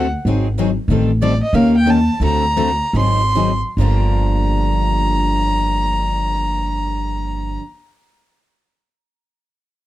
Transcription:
Already playing: upright bass D2, violin F#5
0.25 upright bass G#1, steel-string acoustic guitar D#3 F#3 C4 D#4 G#4
0.58 steel-string acoustic guitar D#3 F#3 C4 D#4 G#4
0.88 upright bass A1, steel-string acoustic guitar D#3 G3 C4 G4 A4
1.22 steel-string acoustic guitar D#3 G3 C4 G4 A4, violin D5
1.43 violin D#5
1.53 upright bass D#2, steel-string acoustic guitar D#3 A#3 C#4 G4 A#4, violin F5
1.77 violin G5
1.85 steel-string acoustic guitar D#3 A#3 C#4 G4 A#4
1.90 violin A5
2.20 upright bass D2, steel-string acoustic guitar D3 A3 C4 F#4 A4
2.24 violin A#5
2.56 steel-string acoustic guitar D3 A3 C4 F#4 A4
2.93 upright bass G#1, steel-string acoustic guitar D#3 F#3 C4 D#4 G#4
2.98 violin C6
3.35 steel-string acoustic guitar D#3 F#3 C4 D#4 G#4
3.77 upright bass G1, steel-string acoustic guitar G2 D3 F3 A#3, violin A#5
3.81 steel-string acoustic guitar D4 G4

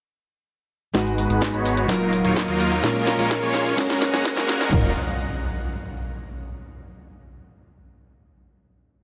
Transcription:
0.94 analog synth bass G#1, steel-string acoustic guitar G#2 G#3 D#4 F#4 B4, supersaw synth G#3 B3 D#4 F#4 B4, analog synth pad G#4 F#5 B5, kick, snare, closed hi-hat, riser
1.06 closed hi-hat
1.18 open hi-hat
1.30 analog synth bass G#1, supersaw synth G#3 B3 D#4 F#4 B4, closed hi-hat
1.42 kick, snare, closed hi-hat
1.54 analog synth bass G#1, supersaw synth G#3 B3 D#4 F#4 C#5, closed hi-hat
1.65 open hi-hat
1.77 closed hi-hat
1.88 analog synth bass D#1, steel-string acoustic guitar F#3 D#4 F4 A#4, analog synth pad F#3 F5 D#6, supersaw synth F#3 A#3 D#4 F4 A#4, kick, snare, closed hi-hat
2.01 closed hi-hat
2.13 open hi-hat
2.25 analog synth bass D#1, supersaw synth F#3 A#3 D#4 F4 C#5, closed hi-hat
2.36 kick, snare, closed hi-hat
2.48 analog synth bass D#2, supersaw synth F#3 A#3 D#4 F4 A#4, closed hi-hat
2.60 open hi-hat
2.72 closed hi-hat
2.82 analog synth bass A#1, steel-string acoustic guitar A#2 G#3 C#4 F4 A#4, supersaw synth G#3 A#3 C#4 F4 A#4, analog synth pad A#4 G#5 C#6, kick, snare, closed hi-hat
2.95 closed hi-hat
3.07 snare, open hi-hat
3.19 analog synth bass A#1, supersaw synth G#3 A#3 C#4 F4 A#4, closed hi-hat
3.31 kick, snare, closed hi-hat
3.43 analog synth bass A#1, supersaw synth G#3 A#3 C#4 F4 C#5, closed hi-hat
3.54 snare, open hi-hat
3.66 closed hi-hat
3.77 analog synth bass F#1, steel-string acoustic guitar G#3 C#4 F#4 A#4, supersaw synth G#3 A#3 C#4 F#4 A#4, analog synth pad G#4 F#5 A#5, kick, snare, closed hi-hat
3.90 snare, closed hi-hat
4.02 snare, open hi-hat
4.14 analog synth bass F#1, supersaw synth G#3 A#3 C#4 F#4 C#5, snare, closed hi-hat
4.25 kick, snare, closed hi-hat
4.37 analog synth bass F#2, supersaw synth G#3 A#3 C#4 F#4 A#4, snare, closed hi-hat
4.49 snare, open hi-hat
4.61 snare, closed hi-hat
4.71 analog synth bass D#1, steel-string acoustic guitar F#3 D#4 F4 A#4, supersaw synth F#3 A#3 D#4 F4 A#4, analog synth pad F4 D#5 F#5, kick, floor tom, impact

